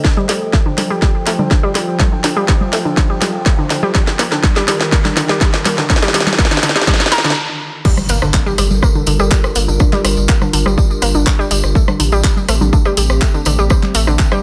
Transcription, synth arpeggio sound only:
0.05 D3
0.17 G3
0.29 G3
0.53 A3
0.66 D3
0.78 D3
0.90 G3
1.02 G3
1.26 A3
1.39 D3
1.51 D3
1.63 G3
1.75 G3
1.99 A3
2.12 D3
2.24 D3
2.36 G3
2.48 G3
2.73 A3
2.85 D3
2.97 D3
3.10 G3
3.22 G3
3.46 A3
3.58 D3
3.70 D3
3.83 G3
3.95 G3
4.19 A#3
4.32 D3
4.44 D3
4.56 G3
4.68 G3
4.92 A#3
5.05 D3
5.17 D3
5.29 G3
5.41 G3
5.66 A#3
5.78 D3
5.90 D3
6.02 G3
6.14 G3
6.39 A#3
6.51 D3
6.63 D3
6.76 G3
6.88 G3
7.12 A#4
7.25 D3
7.85 G3
8.10 A#3
8.22 D3
8.34 D3
8.46 G3
8.58 G3
8.83 A#3
8.95 D3
9.07 D3
9.20 G3
9.31 G3
9.56 A#3
9.68 D3
9.80 D3
9.93 G3
10.04 G3
10.29 A#3
10.42 D3
10.53 D3
10.66 G3
10.78 G3
11.02 A#3
11.15 D3
11.27 D3
11.39 G3
11.51 G3
11.75 A3
11.88 D3
12.00 D3
12.12 G3
12.24 G3
12.49 A3
12.61 D3
12.73 D3
12.86 G3
12.97 G3
13.22 A3
13.34 D3
13.46 D3
13.59 G3
13.70 G3
13.95 A3
14.07 D3
14.19 D3
14.32 G3

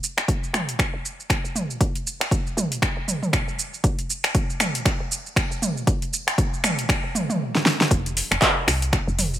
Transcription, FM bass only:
0.17 F1
0.53 C2
0.94 F1
1.44 F1
2.20 F1
2.57 C2
2.97 F1
3.48 F1
4.24 D#1
4.61 A#1
5.00 D#1
5.51 D#1
6.27 D#1
6.64 A#1
7.04 D#1
7.91 F1
8.31 F1
8.67 C2
9.07 F1

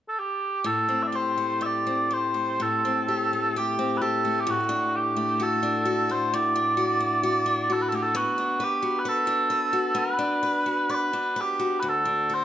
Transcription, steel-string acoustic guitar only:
0.64 A2
0.89 C4
1.12 G4
1.38 A3
1.61 G4
1.87 C4
2.11 G4
2.34 A3
2.60 A2
2.85 C4
3.08 G4
3.33 A3
3.56 G4
3.79 C4
4.02 G4
4.25 A3
4.47 A2
4.69 D4
5.16 A3
5.40 F#4
5.63 D4
5.85 F#4
6.09 A3
6.34 A2
6.56 D4
6.77 F#4
7.00 A3
7.23 F#4
7.46 D4
7.70 F#4
7.92 A3
8.15 B3
8.38 D4
8.60 B4
8.82 F#4
9.05 B4
9.27 D4
9.50 B4
9.73 F#4
9.95 B3
10.19 D4
10.43 B4
10.66 F#4
10.89 B4
11.13 D4
11.36 B4
11.59 F#4
11.82 D2
12.05 D4
12.29 F#4

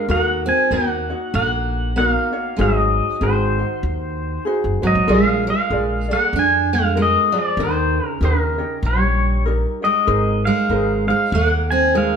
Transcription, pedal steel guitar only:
0.11 F#5
0.49 G#5
0.74 F#5
1.35 F#5
1.98 F#5
2.09 F5
2.61 D#5
3.23 C5
4.87 D#5
5.13 F5
5.50 F5
6.13 F#5
6.39 G#5
6.75 F5
7.02 D#5
7.39 D5
7.63 C5
8.06 A#4
8.25 A#4
8.87 C#5
9.84 D#5
10.45 F5
11.08 F5
11.34 F#5
11.71 G#5
11.97 F5

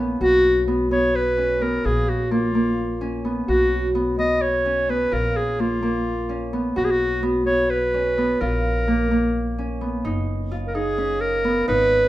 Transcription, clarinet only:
0.21 F#4
0.92 C#5
1.16 B4
1.63 A#4
1.86 G#4
2.09 F#4
2.32 F4
3.48 F#4
4.19 D#5
4.42 C#5
4.90 B4
5.13 A#4
5.37 G#4
5.61 F4
6.77 F#4
6.85 G#4
6.91 F#4
7.46 C#5
7.70 B4
8.41 A#4
10.67 A#4
10.75 G#4
11.21 A#4
11.68 B4

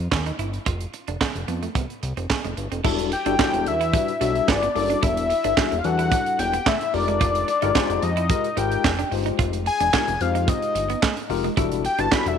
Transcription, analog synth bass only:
0.12 D#2
0.39 G1
0.66 F1
1.08 F1
1.35 F1
1.48 F2
1.75 C2
2.03 C2
2.17 F1
2.45 F1
2.58 G1
2.72 F1
2.84 E1
3.26 G1
3.54 E1
3.66 E2
4.21 B1
4.48 G1
4.76 F#1
5.03 E1
5.45 G1
5.72 E1
5.85 E2
6.39 E1
6.94 F1
7.63 G1
7.90 F1
8.03 F2
8.57 G#1
8.84 F1
9.12 G1
9.39 F1
9.81 E1
10.08 F1
10.21 F2
10.75 G1
11.30 F1
11.57 E1
11.99 G1
12.26 E1

